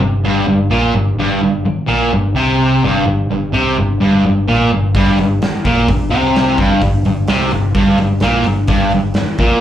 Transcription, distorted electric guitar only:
0.01 G2
0.25 G2
0.48 G2
0.71 A#2
0.94 G2
1.19 G2
1.43 G2
1.65 muted distorted electric guitar stroke
1.87 A#2
2.13 G2
2.36 C3
2.84 G2
3.06 G2
3.31 G2
3.53 C3
3.78 G2
4.00 G2
4.26 G2
4.48 A#2
4.73 G2
4.96 G2
5.21 G2
5.42 muted distorted electric guitar stroke
5.65 A#2
5.88 G2
6.10 C3
6.58 G2
6.83 G2
7.05 G2
7.29 C3
7.52 G2
7.75 G2
8.00 G2
8.22 A#2
8.46 G2
8.67 G2
8.94 G2
9.18 muted distorted electric guitar stroke
9.39 A#2

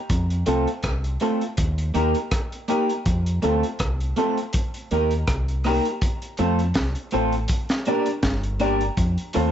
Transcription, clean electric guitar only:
0.46 A3 C4 F4 A4
1.21 A3 C4 F4 A4
1.94 A#3 D#4 G4 A#4
2.68 A#3 D#4 G4 A#4
3.42 A3 C4 F4 A4
4.16 A3 C4 F4 A4
4.91 A#3 D#4 G4 A#4
5.65 A#3 D#4 G4 A#4
6.39 A3 C4 F4 A4
7.12 A3 C4 F4 A4
7.87 A#3 D4 G4 A#4
8.60 A#3 D4 G4 A#4
9.34 A3 C4 F4 A4

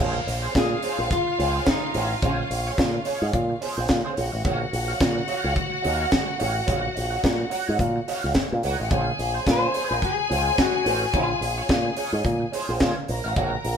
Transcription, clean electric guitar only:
0.00 C#4 G#4 C5
0.15 muted clean electric guitar stroke
0.27 muted clean electric guitar stroke
0.42 C#4 G#4 C5
0.55 muted clean electric guitar stroke
0.71 muted clean electric guitar stroke
0.83 C#4 G#4 C5
0.99 C#4 G#4 C5
1.10 muted clean electric guitar stroke
1.27 muted clean electric guitar stroke
1.38 C#4 G#4 C5
1.54 C#4 G#4 C5
1.82 muted clean electric guitar stroke
1.95 C#4 G#4 C5
2.11 muted clean electric guitar stroke
2.23 C#4 G#4 C5
2.39 muted clean electric guitar stroke
2.52 muted clean electric guitar stroke
2.67 C#4 G#4 C#5
2.79 muted clean electric guitar stroke
2.94 muted clean electric guitar stroke
3.05 C#4 G#4 C#5
3.21 C#4 G#4 C#5
3.34 muted clean electric guitar stroke
3.50 muted clean electric guitar stroke
3.61 C#4 G#4 C5
3.77 C#4 G#4 C5
3.89 muted clean electric guitar stroke
4.05 C#4 G#4 C5
4.17 muted clean electric guitar stroke
4.32 muted clean electric guitar stroke
4.44 F#4 C#5 F5
4.61 muted clean electric guitar stroke
4.72 muted clean electric guitar stroke
4.88 F#4 C#5 F5
5.00 muted clean electric guitar stroke
5.15 muted clean electric guitar stroke
5.28 F#4 C#5 F5
5.44 F#4 C#5 F5
5.56 muted clean electric guitar stroke
5.71 muted clean electric guitar stroke
5.82 F#4 C#5 F5
5.99 F#4 C#5 F5
6.26 muted clean electric guitar stroke
6.38 F#4 C#5 F5
6.54 muted clean electric guitar stroke
6.66 F#4 C#5 F5
6.82 muted clean electric guitar stroke
6.95 muted clean electric guitar stroke
7.10 F#4 C#5 F#5
7.23 muted clean electric guitar stroke
7.38 muted clean electric guitar stroke
7.50 F#4 C#5 F#5
7.67 F#4 C#5 F#5
7.80 muted clean electric guitar stroke
7.96 muted clean electric guitar stroke
8.08 F#4 C#5 F5
8.23 F#4 C#5 F5
8.35 muted clean electric guitar stroke
8.52 muted clean electric guitar stroke
8.63 F#4 C#5 F#5
8.80 muted clean electric guitar stroke
8.92 C#4 G#4 C5
9.08 muted clean electric guitar stroke
9.20 muted clean electric guitar stroke
9.34 C#4 G#4 C5
9.47 muted clean electric guitar stroke
9.62 muted clean electric guitar stroke
9.74 C#4 G#4 C5
9.89 C#4 G#4 C5
10.02 muted clean electric guitar stroke
10.17 muted clean electric guitar stroke
10.29 C#4 G#4 C5
10.46 C#4 G#4 C5
10.74 muted clean electric guitar stroke
10.85 C#4 G#4 C5
11.01 muted clean electric guitar stroke
11.13 C#4 G#4 C5
11.29 muted clean electric guitar stroke
11.42 muted clean electric guitar stroke
11.58 C#4 G#4 C#5
11.70 muted clean electric guitar stroke
11.85 muted clean electric guitar stroke
11.97 C#4 G#4 C#5
12.13 C#4 G#4 C#5
12.25 muted clean electric guitar stroke
12.40 muted clean electric guitar stroke
12.52 C#4 G#4 C5
12.68 C#4 G#4 C5
12.80 C#4 G#4 C5
12.97 muted clean electric guitar stroke
13.08 muted clean electric guitar stroke
13.24 F#4 C#5 F5
13.36 F#4 C#5 F5
13.53 muted clean electric guitar stroke
13.64 muted clean electric guitar stroke

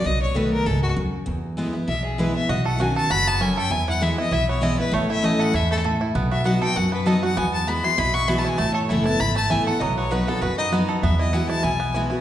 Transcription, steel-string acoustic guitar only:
0.04 B2
0.35 D#3 A3 B3 F#4
0.66 G#2
0.96 F#2
1.26 E2
1.57 E3 G#3 B3 E4
1.73 B3 E4
1.88 B2
2.18 E3 G#3 B3 E4
2.35 B3 E4
2.49 B2
2.78 B2 D#3 C#4 F#4
3.11 G#2
3.40 F#2
3.70 E2
4.00 E3 G#3 B3 E4
4.17 B3 E4
4.31 B2
4.61 E3 G#3 B3 E4
4.78 B3 E4
4.92 A2
5.22 E3 A3 C#4 E4
5.53 G#2
5.84 A2
6.15 B2
6.44 F#3 B3 D#4 F#4
6.62 D#4 F#4
6.76 F#2
7.06 F#3 B3 D#4 F#4
7.23 D#4 F#4
7.37 E2
7.67 E3 G#3 B3 F#4
7.84 B3 F#4
7.98 B2
8.28 E3 G#3 B3 F#4
8.58 A2
8.90 E3 A3 B3 E4
9.06 B3 E4
9.21 E2
9.50 E3 A3 B3 E4
9.67 B3 E4
9.81 B2
10.11 F#3 B3 D#4 F#4
10.27 D#4 F#4
10.42 F#2
10.72 F#3 B3 D#4 F#4
11.04 E2
11.33 E3 G#3 B3 F#4
11.64 B2
11.95 E3 G#3 B3 F#4
12.11 B3 F#4

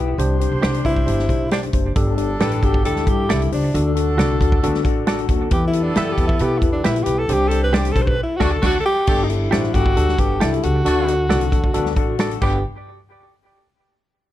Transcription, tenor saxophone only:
0.85 E4
1.52 D4
2.41 A4
2.64 G4
2.86 A4
3.09 G4
3.31 E4
3.54 D4
5.53 G4
5.68 E4
5.83 D4
5.98 A4
6.13 G4
6.27 E4
6.42 G4
6.58 E4
6.73 D4
6.88 E4
7.04 G4
7.19 A4
7.33 G4
7.48 A4
7.64 B4
7.78 G4
7.92 A4
8.02 C5
8.07 B4
8.23 E4
8.37 F#4
8.52 A4
8.66 F#4
8.80 A4
8.85 G4
9.24 D#4
9.29 E4
9.75 F#4
10.20 G4
10.42 E4
10.64 F#4
12.42 G4

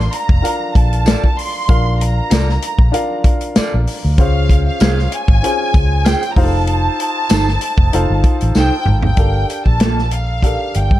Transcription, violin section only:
Already playing: C6
0.13 A#5
0.75 A5
1.37 C6
2.01 A#5
4.20 F5
4.67 F5
5.12 G#5
6.06 G5
6.31 A#5
6.37 A5
8.57 G5
9.06 G5
9.68 A5
10.13 F5
10.77 G5

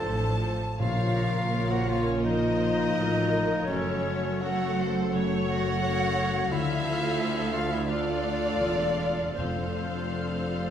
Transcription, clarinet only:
Already playing: A4
0.81 F4
1.71 F#4
1.89 F4
2.08 C#4
2.25 D#4
3.68 C#4
4.42 F#4
5.49 F#4
6.52 E4
7.53 F4
7.72 E4
7.90 D4
9.38 C4

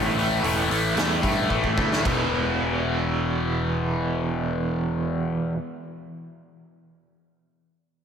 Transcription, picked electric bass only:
Already playing: A1
0.44 E1
0.70 A1
0.97 E2
1.23 G2
1.50 A1
1.77 D2
2.05 E1

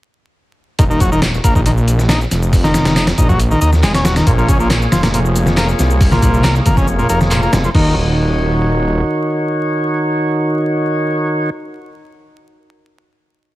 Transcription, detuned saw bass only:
0.79 D#1
1.44 A#1
2.31 F1
3.18 A#1
3.61 D#2
3.83 D#1
4.27 A#1
4.92 F1
5.79 C2
6.66 F1
7.09 F1
7.53 F1
7.75 D#1

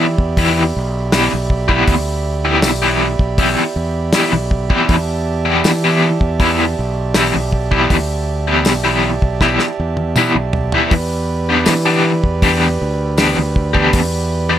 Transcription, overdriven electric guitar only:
0.38 E3 B3 E4 G4
1.12 E3 B3 E4 G4
1.32 muted overdriven electric guitar stroke
1.68 E3 B3 E4 G4
2.45 E3 B3 E4 G4
2.82 E3 B3 E4 G4
3.38 E3 B3 E4 G4
4.14 E3 B3 E4 G4
4.32 muted overdriven electric guitar stroke
4.70 E3 B3 E4 G4
5.45 E3 B3 E4 G4
5.84 E3 B3 E4 G4
6.40 E3 B3 E4 G4
7.15 E3 B3 E4 G4
7.35 muted overdriven electric guitar stroke
7.71 E3 B3 E4 G4
8.47 E3 B3 E4 G4
8.84 E3 B3 E4 G4
9.41 E3 B3 E4 G4
10.17 E3 B3 E4 G4
10.36 muted overdriven electric guitar stroke
10.74 E3 B3 E4 G4
11.49 E3 B3 D4 G4
11.86 E3 B3 D4 G4
12.43 E3 B3 D4 G4
13.18 E3 B3 D4 G4
13.38 muted overdriven electric guitar stroke
13.73 E3 B3 D4 G4
14.49 E3 B3 D4 G4

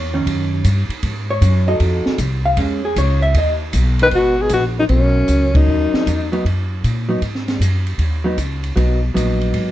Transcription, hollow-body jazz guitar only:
Already playing: C#5
0.14 D#3 C#4
1.31 C#5
1.68 D#4 F#4 A4 D#5
2.46 F5
2.58 G#3 C#4
2.85 G#4
2.98 C#5
3.22 E5
3.38 D#5
6.32 F#3 B3 D#4
7.09 F#3 B3 D#4
8.24 F#3 B3 D#4
8.76 F#3 B3 D#4
9.14 F#3 B3 D#4

